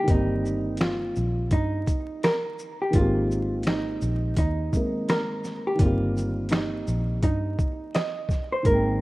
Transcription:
0.03 2.87 D#3 medium
0.03 2.89 G3 medium
0.08 1.11 G1 medium
0.08 2.90 A#3 medium
0.08 2.91 C4 medium
0.08 0.80 D#4 medium
0.08 kick loud
0.08 closed hi-hat medium
0.14 2.93 G4 medium
0.46 shaker soft
0.77 1.52 F4 medium
0.77 snare loud
0.77 closed hi-hat medium
0.81 finger snap medium
1.16 1.49 A#1 medium
1.16 shaker soft
1.51 1.84 G2 medium
1.51 2.25 D#4 medium
1.51 kick medium
1.51 closed hi-hat medium
1.87 kick medium
1.87 closed hi-hat soft
1.87 shaker soft
2.23 2.81 A#4 medium
2.23 finger snap medium
2.23 snare loud
2.23 closed hi-hat medium
2.59 shaker soft
2.82 2.95 G4 medium
2.90 4.67 D#3 medium
2.90 4.68 G#3 medium
2.90 kick loud
2.90 closed hi-hat medium
2.94 3.97 G#1 loud
2.94 4.70 A#3 medium
2.94 3.66 F4 medium
2.99 4.71 C4 medium
2.99 4.72 G4 medium
3.31 shaker soft
3.63 4.37 D#4 medium
3.63 snare loud
3.63 closed hi-hat medium
3.67 finger snap medium
4.01 4.34 A#1 medium
4.01 shaker soft
4.37 4.70 D#2 medium
4.37 5.11 D#4 medium
4.37 kick medium
4.37 closed hi-hat medium
4.72 5.74 D#3 soft
4.72 5.80 G#3 soft
4.72 5.79 A#3 soft
4.72 5.81 C4 soft
4.72 kick medium
4.72 shaker soft
4.77 5.82 A#4 medium
5.09 5.68 A#4 medium
5.09 finger snap medium
5.09 snare loud
5.09 closed hi-hat medium
5.44 snare soft
5.44 shaker soft
5.67 5.80 G4 medium
5.75 8.59 D#3 medium
5.75 8.60 G3 medium
5.75 closed hi-hat medium
5.79 6.83 G1 loud
5.79 8.61 A#3 medium
5.79 8.63 C4 medium
5.79 6.53 F4 medium
5.79 kick loud
5.86 8.64 G4 medium
6.17 shaker soft
6.49 7.22 D#4 medium
6.49 snare loud
6.49 closed hi-hat medium
6.53 finger snap medium
6.87 7.20 A#1 medium
6.87 shaker soft
7.23 7.55 G2 loud
7.23 7.96 D#4 medium
7.23 kick medium
7.23 closed hi-hat medium
7.59 kick medium
7.59 shaker soft
7.95 8.52 D#5 medium
7.95 finger snap medium
7.95 snare loud
7.95 closed hi-hat medium
8.29 kick medium
8.29 snare soft
8.29 shaker soft
8.52 8.66 C5 medium
8.63 9.01 G#1 loud
8.63 9.01 D#3 medium
8.63 9.01 G#3 medium
8.63 9.01 A#4 medium
8.63 kick loud
8.63 closed hi-hat medium
8.68 9.01 A#3 medium
8.68 9.01 C4 medium
8.74 9.01 G5 medium

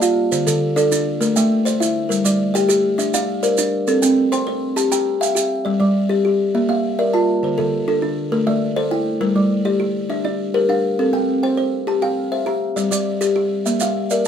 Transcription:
0.00 0.32 F4 medium
0.00 0.17 D5 medium
0.00 0.32 E5 medium
0.00 0.47 F5 medium
0.00 maracas medium
0.32 0.62 D3 medium
0.32 0.62 C5 medium
0.32 maracas medium
0.47 0.77 D3 medium
0.47 0.91 A4 medium
0.47 maracas medium
0.76 0.90 D4 medium
0.76 1.21 A4 medium
0.76 1.21 D5 medium
0.76 maracas medium
0.91 1.36 D4 medium
0.91 maracas medium
1.21 1.51 A3 medium
1.21 1.51 A#4 medium
1.21 maracas medium
1.36 1.66 A3 medium
1.36 1.81 E5 medium
1.36 1.80 G5 medium
1.36 maracas medium
1.65 1.95 C5 medium
1.65 2.11 D5 medium
1.65 maracas medium
1.80 2.10 E4 medium
1.80 2.25 E5 medium
1.80 maracas medium
2.09 2.40 G3 medium
2.09 2.39 A#4 medium
2.09 maracas medium
2.24 2.54 G3 medium
2.24 2.70 D5 medium
2.24 maracas medium
2.54 2.68 G4 medium
2.54 2.99 D5 medium
2.54 2.99 G5 medium
2.54 maracas medium
2.69 2.99 G4 medium
2.69 3.14 G4 medium
2.69 maracas medium
2.98 3.28 D4 medium
2.98 3.43 E5 medium
2.98 maracas medium
3.14 3.44 D4 medium
3.14 3.58 D5 medium
3.14 3.58 F5 medium
3.14 maracas medium
3.43 3.73 A#4 medium
3.43 3.88 C5 medium
3.43 3.88 D5 medium
3.43 maracas medium
3.58 3.88 D4 medium
3.58 maracas medium
3.87 4.17 C4 medium
3.87 4.17 A4 medium
3.87 maracas medium
4.02 4.32 C4 medium
4.02 4.47 G5 medium
4.02 maracas medium
4.32 4.46 C5 medium
4.32 4.77 G5 medium
4.32 4.77 C6 medium
4.32 maracas medium
4.47 4.91 C5 medium
4.76 5.06 G4 medium
4.76 5.21 A5 medium
4.76 maracas medium
4.92 5.21 G4 medium
4.92 5.36 G5 medium
4.92 5.36 A#5 medium
4.92 maracas medium
5.21 5.51 E5 medium
5.21 5.66 F5 medium
5.21 5.35 G5 medium
5.21 maracas medium
5.35 5.65 G4 medium
5.35 5.81 G5 medium
5.35 maracas medium
5.65 5.95 G3 medium
5.65 5.95 D5 medium
5.80 6.10 G3 medium
5.80 6.24 D5 medium
6.09 6.39 G4 medium
6.09 6.55 D5 medium
6.25 6.69 G4 medium
6.55 6.84 A#3 medium
6.55 6.84 E5 medium
6.69 6.99 A#3 medium
6.69 7.14 E5 medium
6.69 7.13 F5 medium
6.99 7.43 A#4 medium
6.99 7.28 D5 medium
6.99 7.43 E5 medium
7.13 7.43 F4 medium
7.13 7.58 A5 medium
7.43 7.73 D3 medium
7.43 7.73 C5 medium
7.58 7.88 D3 medium
7.58 8.02 A4 medium
7.88 8.17 D4 medium
7.88 8.32 A4 medium
8.02 8.47 D4 medium
8.32 8.62 A3 medium
8.32 8.62 A#4 medium
8.47 8.76 A3 medium
8.47 8.91 D5 medium
8.47 8.91 E5 medium
8.76 9.21 A4 medium
8.76 9.06 C5 medium
8.76 9.21 D5 medium
8.91 9.21 E4 medium
8.91 9.36 G5 medium
9.21 9.50 G3 medium
9.21 9.51 A#4 medium
9.36 9.65 G3 medium
9.36 9.80 D5 medium
9.65 9.95 G4 medium
9.65 10.10 D5 medium
9.80 10.25 G4 medium
10.10 10.39 D4 medium
10.10 10.54 E5 medium
10.25 10.54 D4 medium
10.25 10.69 D5 medium
10.54 10.99 G4 medium
10.54 10.84 A#4 medium
10.54 10.99 C5 medium
10.69 10.99 D4 medium
10.69 11.14 F5 medium
10.99 11.29 C4 medium
10.99 11.29 A4 medium
11.13 11.43 C4 medium
11.13 11.58 G5 medium
11.43 11.73 C5 medium
11.43 11.88 G5 medium
11.57 12.02 C5 medium
11.87 12.17 G4 medium
11.87 12.32 A5 medium
12.02 12.32 G4 medium
12.02 12.47 F5 medium
12.02 12.47 G5 medium
12.32 12.77 C5 medium
12.32 12.62 E5 medium
12.46 12.76 G4 medium
12.46 12.92 A#5 medium
12.76 13.06 G3 medium
12.76 13.06 D5 medium
12.76 maracas medium
12.91 13.21 G3 medium
12.91 13.36 D5 medium
12.91 maracas medium
13.21 13.51 G4 medium
13.21 maracas soft
13.36 13.66 G4 medium
13.66 13.96 A#3 medium
13.66 13.96 E5 medium
13.66 maracas medium
13.80 14.11 A#3 medium
13.80 14.25 E5 medium
13.80 14.26 F5 medium
13.80 maracas medium
14.10 14.28 A#4 medium
14.10 14.28 D5 medium
14.10 14.28 E5 medium
14.10 maracas medium

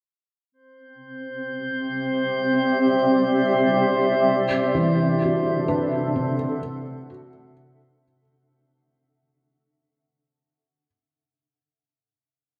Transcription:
0.52 5.77 C4 medium
0.52 8.05 C5 medium
1.13 4.27 G4 medium
1.34 8.03 E5 medium
2.05 5.79 D5 medium
4.28 8.13 C3 medium
4.28 8.03 D4 medium
4.59 8.03 A4 medium
4.75 6.34 E3 medium
5.22 7.08 F#4 soft
5.68 7.28 D4 medium
5.68 6.57 B4 medium
5.95 8.02 F#5 medium
6.16 8.22 C3 medium
6.63 7.51 A4 medium
7.10 10.84 F#4 medium

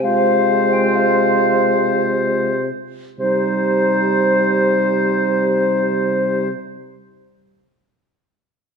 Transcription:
0.00 2.67 C3 soft
0.00 2.67 G#3 soft
0.00 2.68 F4 soft
0.00 2.68 C5 soft
0.00 0.74 F5 soft
0.73 0.97 G5 soft
0.95 2.01 F5 soft
3.19 6.49 C3 soft
3.19 6.50 G3 soft
3.19 6.49 D#4 soft
3.19 6.50 C5 soft

